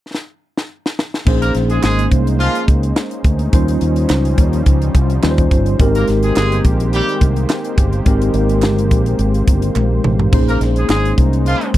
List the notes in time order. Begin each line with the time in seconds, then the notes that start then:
0.15 snare
0.57 snare
0.86 snare
0.99 snare
1.14 snare
1.26 A#1 G#3 A#3 C#4 D#4 G#4 C5, kick, crash
1.42 A#3 A#4, closed hi-hat
1.55 A#1, snare, closed hi-hat
1.69 G#3 G#4, closed hi-hat
1.83 G#1 G#3 G#4, snare, clap
1.99 closed hi-hat
2.12 C2, kick, closed hi-hat
2.27 closed hi-hat
2.39 F3 F4, closed hi-hat
2.55 closed hi-hat
2.68 C#2, kick, closed hi-hat
2.83 closed hi-hat
2.96 snare, clap
3.11 closed hi-hat
3.24 D2, kick, closed hi-hat
3.39 closed hi-hat
3.52 D#2 F3 G3 C#4 D#4 F4 C5, kick, closed hi-hat
3.68 closed hi-hat
3.81 D#2, closed hi-hat
3.96 closed hi-hat
4.09 C#2, snare, clap
4.25 closed hi-hat
4.38 D#2, kick, closed hi-hat
4.53 closed hi-hat
4.66 C#2, kick, closed hi-hat
4.82 closed hi-hat
4.95 C2, kick, closed hi-hat
5.10 closed hi-hat
5.23 D#2 G3 C#4 D#4 F4 B4, snare, clap
5.31 C5
5.38 kick, closed hi-hat
5.51 G1, kick, closed hi-hat
5.66 closed hi-hat
5.79 G#1 D#3 G#3 A#3 D#4 G4 A#4, kick, closed hi-hat
5.86 C4
5.95 A#3 A#4, closed hi-hat
6.08 G#1, snare, closed hi-hat
6.23 G#3 G#4, closed hi-hat
6.36 G1 G#3 G#4, snare, clap
6.52 closed hi-hat
6.64 A#1, kick, closed hi-hat
6.80 closed hi-hat
6.93 G3 G4, closed hi-hat
7.09 closed hi-hat
7.21 C2, kick, closed hi-hat
7.36 closed hi-hat
7.49 snare, clap
7.65 closed hi-hat
7.78 G1, kick, closed hi-hat
7.93 closed hi-hat
8.05 G#1 G#3 C4 D#4 G4 A#4, kick, closed hi-hat
8.22 closed hi-hat
8.34 G#1, closed hi-hat
8.49 closed hi-hat
8.62 G1, snare, clap
8.79 closed hi-hat
8.91 A#1, kick, closed hi-hat
9.06 closed hi-hat
9.19 G#1, closed hi-hat
9.34 closed hi-hat
9.47 G1, kick, closed hi-hat
9.62 closed hi-hat
9.76 A#1, clap, high tom
10.04 A1, mid tom
10.19 floor tom
10.32 A#1 G#3 A#3 C#4 D#4 G#4 C5, kick, crash
10.48 A#3 A#4, closed hi-hat
10.60 A#1, snare, closed hi-hat
10.76 G#3 G#4, closed hi-hat
10.89 G#1 G#3 G#4, snare, clap
11.05 closed hi-hat
11.18 C2, kick, closed hi-hat
11.33 closed hi-hat
11.46 F3 F4, closed hi-hat
11.61 closed hi-hat
11.74 C#2, kick, closed hi-hat